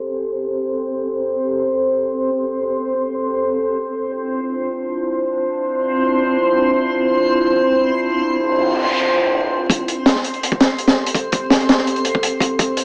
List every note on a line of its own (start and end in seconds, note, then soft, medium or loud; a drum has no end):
0.00 3.88 C4 medium
0.00 9.69 C4 medium
0.00 3.88 G4 medium
0.00 3.88 A4 medium
0.00 3.88 C5 medium
0.00 9.69 C6 medium
3.92 9.66 D4 medium
3.92 9.66 E4 medium
3.92 9.66 F4 medium
3.92 9.66 C5 medium
8.25 noise sweep medium
9.70 12.84 C4 medium
9.70 12.84 G4 medium
9.70 12.84 A4 medium
9.70 12.84 C5 medium
9.70 12.84 C6 medium
9.70 kick loud
9.70 closed hi-hat medium
9.88 closed hi-hat medium
10.06 snare loud
10.06 closed hi-hat medium
10.15 snare medium
10.24 closed hi-hat medium
10.34 closed hi-hat soft
10.43 closed hi-hat medium
10.52 kick medium
10.60 snare medium
10.60 closed hi-hat medium
10.78 closed hi-hat medium
10.88 snare loud
10.88 closed hi-hat medium
11.06 closed hi-hat medium
11.15 kick loud
11.15 closed hi-hat medium
11.32 kick medium
11.32 closed hi-hat medium
11.50 snare loud
11.50 closed hi-hat medium
11.60 closed hi-hat soft
11.69 snare loud
11.69 closed hi-hat medium
11.78 snare soft
11.87 closed hi-hat medium
11.96 closed hi-hat soft
12.05 closed hi-hat medium
12.15 kick medium
12.23 closed hi-hat medium
12.40 kick medium
12.40 closed hi-hat medium
12.59 kick loud
12.59 closed hi-hat medium
12.77 closed hi-hat medium